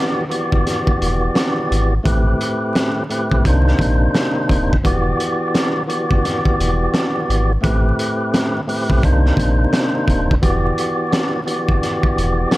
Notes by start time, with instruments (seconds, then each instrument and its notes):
Already playing: tonewheel organ E3 B3 F#4 G4 D5
0.29 tonewheel organ E3 B3 F#4 G4 D5, closed hi-hat
0.52 sub bass G1, kick
0.67 snare, closed hi-hat
0.87 kick
1.01 sub bass E1, closed hi-hat
1.35 snare, closed hi-hat
1.71 sub bass G#1, closed hi-hat
2.03 sub bass A1, tonewheel organ A2 A3 C4 G4 B4, kick, closed hi-hat
2.41 closed hi-hat
2.75 snare, closed hi-hat
3.09 tonewheel organ A2 A3 C4 G4 B4, closed hi-hat
3.31 sub bass B1, kick
3.45 sub bass C2, tonewheel organ C3 A#3 D4 D#4 C5, kick, closed hi-hat
3.68 snare
3.79 sub bass A#1, kick, closed hi-hat
4.15 snare, closed hi-hat
4.49 sub bass D#1, kick, closed hi-hat
4.73 kick
4.83 sub bass E1, tonewheel organ E3 B3 F#4 G4 D5, kick, closed hi-hat
5.20 closed hi-hat
5.55 snare, closed hi-hat
5.87 tonewheel organ E3 B3 F#4 G4 D5, closed hi-hat
6.11 sub bass G1, kick
6.25 snare, closed hi-hat
6.45 kick
6.59 sub bass E1, closed hi-hat
6.94 snare, closed hi-hat
7.29 sub bass G#1, closed hi-hat
7.61 sub bass A1, tonewheel organ A2 A3 C4 G4 B4, kick, closed hi-hat
7.99 closed hi-hat
8.34 snare, closed hi-hat
8.67 tonewheel organ A2 A3 C4 G4 B4, open hi-hat
8.90 sub bass B1, kick
9.03 sub bass C2, tonewheel organ C3 A#3 D4 D#4 C5, kick, closed hi-hat
9.26 snare
9.37 sub bass A#1, kick, closed hi-hat
9.73 snare, closed hi-hat
10.08 sub bass D#1, kick, closed hi-hat
10.31 kick
10.41 sub bass E1, tonewheel organ E3 B3 F#4 G4 D5, kick, closed hi-hat
10.78 closed hi-hat
11.13 snare, closed hi-hat
11.44 tonewheel organ E3 B3 F#4 G4 D5, closed hi-hat
11.68 sub bass G1, kick
11.83 snare, closed hi-hat
12.03 kick
12.17 sub bass E1, closed hi-hat
12.51 snare, closed hi-hat